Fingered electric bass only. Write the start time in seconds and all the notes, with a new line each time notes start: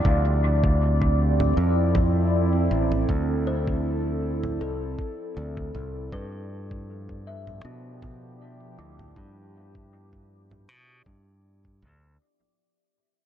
0.05 D2
1.57 F2
2.71 A1
3.09 D2
4.61 C2
5.37 D2
5.75 C2
6.12 G2
7.65 B2
8.79 D2
9.16 G2
10.69 B2
11.06 G2
11.82 D2